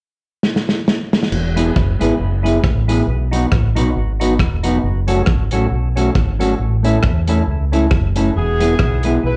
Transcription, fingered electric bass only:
1.32 E1
1.76 F#1
2.01 G#1
2.20 F#1
2.64 A1
3.07 B1
3.52 A1
3.76 B1
3.96 G#1
4.40 E1
4.83 F#1
5.27 G#1
5.52 A1
5.71 B1
6.16 G#1
6.59 A1
7.04 E2
7.47 C#2
7.91 F#1
8.36 E1
8.79 B1
9.24 B1

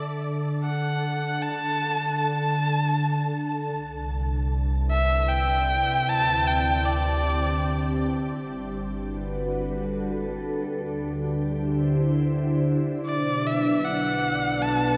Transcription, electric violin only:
Already playing: D5
0.64 F#5
1.42 A5
2.19 A5
4.91 E5
5.29 G5
6.09 A5
6.47 G5
6.85 D5
13.06 D5
13.47 E5
13.85 F#5
14.62 A5

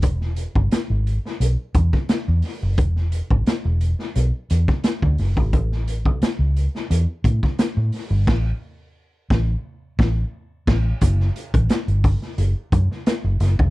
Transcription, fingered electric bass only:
0.03 E1
0.56 G1
0.73 muted fingered electric bass stroke
0.90 G#1
1.40 B1
1.75 E2
2.28 E2
2.63 F#1
2.78 E1
3.30 G#1
3.47 muted fingered electric bass stroke
3.65 E1
4.16 B1
4.51 E2
5.02 D2
5.19 F#1
5.37 G#1
5.53 A1
6.06 B1
6.22 muted fingered electric bass stroke
6.39 C#2
6.90 E2
7.24 A2
7.77 A2
8.11 G1
8.27 A1
9.31 A1
9.99 A1
10.68 A1
11.02 F#1
11.54 A1
11.70 muted fingered electric bass stroke
11.88 G1
12.38 F#1
12.72 F#2
13.24 F#1
13.40 F#1
13.59 E1

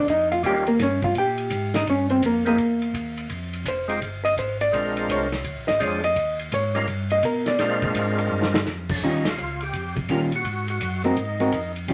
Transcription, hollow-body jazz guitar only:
0.10 D#4 D#5
0.32 F4 F5
0.46 G4 G5
0.68 A#3 A#4
0.83 C#4 C#5
1.04 F4 F5
1.18 G4 G5
1.76 D#4 D#5
1.90 C#4 C#5
2.10 C4 C5
2.26 A#3 A#4
2.47 A#3 A#4
3.68 C5
4.25 D#5
4.39 C5
4.61 D5
5.11 C#5
5.68 D#5
5.83 C#5
6.04 D#5
6.54 C#5
7.12 D#5
7.25 A#4
7.48 D5
9.03 D#3 G3 C#4 F4
10.10 D#3 G3 C#4 F4
11.04 G#3 C4 F#4 A#4
11.40 G#3 C4 F#4 A#4
11.88 D#3 G3 C#4 F4

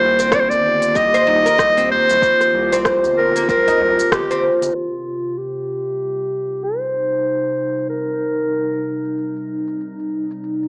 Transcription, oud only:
0.19 C4
0.32 C4
0.95 G4
1.14 C5
1.27 D#4
1.46 A#4
1.58 D#4
1.77 C4
2.73 C4
3.36 A#3
3.49 C4
3.68 D#4
4.31 C4

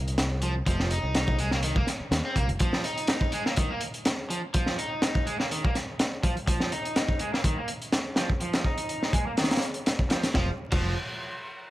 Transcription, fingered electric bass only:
Already playing: C2
0.67 F1
1.03 C2
2.00 muted fingered electric bass stroke
2.11 D#2
2.36 C2
2.49 F1
10.35 F1
10.72 F1

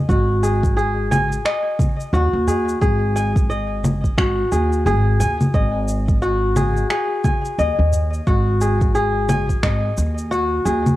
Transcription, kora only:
Already playing: D#5
0.09 F#4
0.43 G#4
0.77 G#4
1.11 G#5
1.45 D#5
2.13 F#4
2.47 G#4
2.81 G#4
3.16 G#5
3.50 D#5
4.18 F#4
4.52 G#4
4.86 G#4
5.20 G#5
5.54 D#5
6.22 F#4
6.56 G#4
6.90 G#4
7.24 G#5
7.59 D#5
8.27 F#4
8.61 G#4
8.95 G#4
9.29 G#5
9.63 D#5
10.31 F#4
10.65 G#4

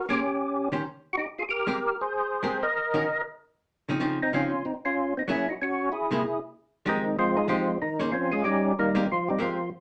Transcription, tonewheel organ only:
0.09 C#4 G4
1.13 F#4
1.17 D#4 G4
1.38 F4 G#4
1.49 G4 A#4
2.01 G#4 C5
2.63 A#4 D#5
4.22 C4 D#4
4.34 C#4 F4
4.65 C4 D#4
4.85 C#4 F4
5.17 C4 D#4
5.30 C#4 E4
5.49 D#4 F#4
5.62 C#4 F#4
5.92 E4 G#4
6.88 D#3 G#3 C4 D#4
7.19 F3 G#3 C4 F4
7.37 G#3 D#4 F4 G#4
7.49 F3 G#3 C4 F4
7.82 D#3 D#4
8.12 F3 C4 C#4 F4
8.32 G#3 C#4 F4 G#4
8.44 G3 C#4 D#4 G4
8.79 D#3 G3 A#3 D#4
9.12 F3 F4
9.28 G3 C4 D#4 G4
9.42 F3 F4

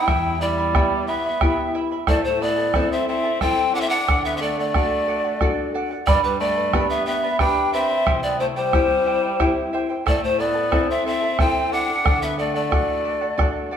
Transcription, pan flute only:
Already playing: G5
0.41 D5
1.07 E5
2.09 D5
2.24 C5
2.42 D5
2.92 E5
3.08 E5
3.41 G5
3.75 F#5
3.81 E5
3.89 F#5
4.25 E5
4.37 E5
4.42 D5
4.60 D5
6.06 D5
6.24 B4
6.40 D5
6.90 E5
7.06 E5
7.40 G5
7.73 E5
8.23 D5
8.40 C5
8.57 C5
10.08 D5
10.24 C5
10.39 D5
10.91 E5
11.07 E5
11.40 G5
11.73 F#5
12.22 E5
12.39 D5
12.55 D5

